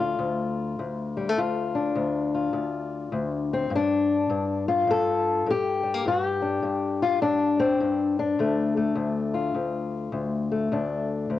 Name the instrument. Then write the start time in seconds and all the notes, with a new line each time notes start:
steel-string acoustic guitar
Already playing: D2 A3 D4
0.00 F4
0.19 D2
0.79 D2
1.17 G3
1.29 A3
1.38 D2 F4
1.75 D4
1.95 D2
2.34 F4
2.53 D2
3.12 D2
3.53 C4
3.70 G2
3.76 D4
4.30 G2
4.68 F4
4.87 G2 A4
5.46 G2
5.50 G4
5.83 G3
5.94 A#3
6.05 G2 F#4
6.26 G4
6.42 D4
6.63 G2
7.02 F4
7.21 G2 D4
7.60 C4
7.80 G2
8.19 D4
8.39 D2 A3
8.77 A3
8.96 D2
9.34 F4
9.55 D2
10.12 D2
10.51 A3
10.72 D2 D4
11.30 D2